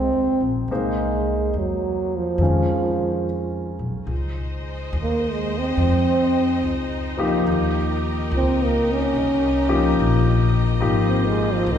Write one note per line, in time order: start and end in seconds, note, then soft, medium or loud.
0.00 0.67 A#3 soft
0.00 0.54 C4 medium
0.00 0.69 D#4 soft
0.00 0.69 F4 soft
0.00 0.70 G#4 soft
0.00 0.70 C5 soft
0.13 0.40 D#2 medium
0.41 0.67 A#1 medium
0.68 1.49 C2 medium
0.68 2.40 A#3 soft
0.68 2.40 D#4 soft
0.68 2.40 G#4 soft
0.72 1.62 G#3 medium
0.72 2.40 C5 soft
1.53 2.35 E2 medium
1.60 2.18 F#3 medium
2.17 3.83 F3 medium
2.38 3.76 F2 medium
2.38 4.10 D#3 soft
2.38 4.10 G#3 soft
2.42 4.11 C#4 soft
2.42 4.11 F4 soft
3.79 4.06 B1 medium
4.07 4.90 C#2 medium
4.07 7.43 G#3 medium
4.07 10.78 D#4 medium
4.07 7.43 C5 medium
4.07 7.43 D#5 medium
4.93 5.75 D#2 medium
5.03 5.34 A#3 medium
5.33 5.60 G#3 medium
5.58 6.85 C4 medium
5.77 6.59 F2 medium
6.62 7.44 C#2 medium
7.17 8.25 F3 medium
7.17 8.25 A#3 medium
7.17 8.25 D#4 medium
7.17 8.26 G4 medium
7.44 8.28 D#2 medium
7.44 10.78 G4 medium
7.44 10.78 A#4 medium
7.44 11.78 D#5 medium
8.32 9.13 C#2 medium
8.37 8.66 C4 medium
8.65 8.94 A#3 medium
8.92 10.20 C#4 medium
9.14 9.96 C2 medium
9.69 10.76 F3 medium
9.69 10.76 A#3 medium
9.69 10.76 D#4 medium
9.69 10.76 G4 medium
9.99 10.80 A#1 medium
10.80 11.64 G#1 medium
10.80 11.78 F3 medium
10.80 11.78 A#3 medium
10.80 11.78 C4 medium
10.80 11.78 D#4 medium
10.80 11.78 F4 medium
10.80 11.78 G4 medium
11.09 11.29 C4 medium
11.27 11.55 G#3 medium
11.54 11.73 F3 medium
11.66 11.78 C2 medium
11.72 11.78 D#3 medium